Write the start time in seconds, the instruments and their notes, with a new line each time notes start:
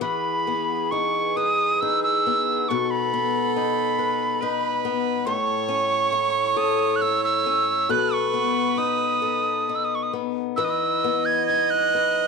Already playing: steel-string acoustic guitar B3 G#4
0.00 steel-string acoustic guitar E3 B4, viola G#4, tin whistle B5
0.47 steel-string acoustic guitar B3
0.91 steel-string acoustic guitar D#4, tin whistle C#6
1.36 steel-string acoustic guitar B4, tin whistle D#6
1.81 steel-string acoustic guitar D#4, tin whistle E6
2.03 tin whistle E6
2.27 steel-string acoustic guitar B3
2.68 steel-string acoustic guitar B2 B4, viola A4, tin whistle C#6
2.90 tin whistle B5
3.14 steel-string acoustic guitar B3
3.56 steel-string acoustic guitar D#4, tin whistle B5
3.99 steel-string acoustic guitar B4
4.40 steel-string acoustic guitar D#4, viola B4
4.85 steel-string acoustic guitar B3
5.26 steel-string acoustic guitar A2 A4, viola C#5, tin whistle C#6
5.68 steel-string acoustic guitar C#4
6.12 steel-string acoustic guitar E4
6.57 steel-string acoustic guitar A4, tin whistle D#6
6.96 tin whistle F#6
7.01 steel-string acoustic guitar E4, tin whistle E6
7.24 tin whistle E6
7.46 steel-string acoustic guitar C#4
7.89 steel-string acoustic guitar B2 A4, viola B4, tin whistle F#6
8.13 tin whistle C#6
8.34 steel-string acoustic guitar B3
8.78 steel-string acoustic guitar D#4, tin whistle D#6
9.22 steel-string acoustic guitar A4
9.69 steel-string acoustic guitar D#4
9.75 tin whistle E6
9.84 tin whistle D#6
9.95 tin whistle C#6
10.03 tin whistle D#6
10.13 steel-string acoustic guitar B3
10.56 steel-string acoustic guitar E3 B4, viola D#5, tin whistle E6
10.64 tin whistle D#6
10.70 tin whistle E6
11.04 steel-string acoustic guitar B3
11.25 tin whistle G#6
11.46 steel-string acoustic guitar D#4, tin whistle G#6
11.70 tin whistle F#6
11.95 steel-string acoustic guitar B4